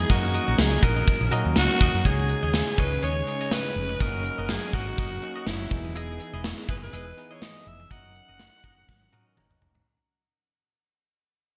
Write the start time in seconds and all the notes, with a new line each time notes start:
Already playing: G#3 B3 D#4 E4 G#4 D#5
0.10 F#2 F#3 A#3 C#4 D#4 F#4 A#4 D#5, kick, closed hi-hat
0.23 muted clean electric guitar stroke
0.34 F#4 A#4 D#5, closed hi-hat
0.47 A#1 F#4 A#4 D#5
0.58 C#2 G#4, muted clean electric guitar stroke, snare, closed hi-hat, tambourine
0.72 muted clean electric guitar stroke
0.83 A#1 F#4 A#4 D#5, kick, closed hi-hat
0.96 F#4 A#4 D#5, closed hi-hat
1.07 muted clean electric guitar stroke, kick, closed hi-hat
1.21 A#1, muted clean electric guitar stroke
1.31 A#2 A#3 C#4 D#4 F#4 A#4 D#5, closed hi-hat
1.45 D#2, muted clean electric guitar stroke
1.56 C#2 F#4, snare, closed hi-hat, tambourine
1.70 muted clean electric guitar stroke
1.81 D#2 F#4 A#4 D#5, kick, open hi-hat
1.94 F#2, muted clean electric guitar stroke, closed hi-hat
2.05 C#2 C#3 G#3 C#4 D#4 F#4 G#4 C#5 D#5, kick, closed hi-hat
2.12 G#4
2.29 muted clean electric guitar stroke, closed hi-hat
2.43 D#2 G#4 C#5 D#5
2.54 snare, closed hi-hat
2.67 muted clean electric guitar stroke
2.78 C#2 G#4 B4 C#5 D#5, kick, closed hi-hat
2.92 muted clean electric guitar stroke, closed hi-hat
3.03 D#2 G#4 C#5 D#5, closed hi-hat
3.16 muted clean electric guitar stroke
3.27 G#3 C#4 D#4 G#4, muted clean electric guitar stroke, closed hi-hat
3.41 G#4 C#5 D#5
3.51 B4, muted clean electric guitar stroke, snare, closed hi-hat
3.65 muted clean electric guitar stroke
3.76 F1, open hi-hat
3.89 muted clean electric guitar stroke
4.00 F#1 F#3 A#3 C#4 D#4 E4 F#4 A#4 D#5, kick, closed hi-hat
4.08 F#4
4.25 muted clean electric guitar stroke, closed hi-hat
4.38 F#1 F#4 A#4 D#5
4.49 G#4, snare, closed hi-hat
4.62 muted clean electric guitar stroke
4.73 G#1 F#4 A#4 D#5, kick, closed hi-hat
4.87 muted clean electric guitar stroke
4.98 F#1 F#4 A#4 D#5, kick, closed hi-hat
5.11 muted clean electric guitar stroke
5.22 A#3 C#4 D#4 F#4, muted clean electric guitar stroke, closed hi-hat
5.36 F#4 A#4 D#5
5.47 F#1 E4, muted clean electric guitar stroke, snare, closed hi-hat
5.60 muted clean electric guitar stroke
5.70 E1 E3 B3 D#4 E4 G#4, kick, closed hi-hat
5.85 muted clean electric guitar stroke
5.95 E4 G#4 D#5, closed hi-hat
6.20 muted clean electric guitar stroke, closed hi-hat
6.33 E1 E4 G#4 D#5
6.44 snare, closed hi-hat
6.58 muted clean electric guitar stroke
6.69 F#1 E4 G#4 B4 D#5, kick, closed hi-hat
6.82 B4, muted clean electric guitar stroke
6.93 E1 E4 G#4 D#5, closed hi-hat
7.06 muted clean electric guitar stroke
7.17 B3 D#4 E4 G#4, muted clean electric guitar stroke, closed hi-hat
7.31 E4 G#4 C#5 D#5
7.42 D#5, muted clean electric guitar stroke, snare, closed hi-hat
7.55 muted clean electric guitar stroke
7.66 F1 E5, closed hi-hat
7.80 muted clean electric guitar stroke
7.90 F#1 F#3 C#4 D#4 F#4 A#4 D#5 F#5, kick, closed hi-hat
8.15 closed hi-hat
8.28 F#1 F#4 A#4 D#5
8.39 snare, closed hi-hat
8.53 muted clean electric guitar stroke
8.64 F#1 F#4 A#4 D#5, kick, closed hi-hat
8.78 muted clean electric guitar stroke
8.88 G#1, muted clean electric guitar stroke, kick, snare
9.02 muted clean electric guitar stroke
9.12 C#4 D#4 F#4 A#4 D#5, high tom
9.26 F#4 A#4 D#5
9.37 F#1 A#5, muted clean electric guitar stroke, mid tom
9.51 F#5, muted clean electric guitar stroke, mid tom
9.62 F1, floor tom
9.75 muted clean electric guitar stroke, floor tom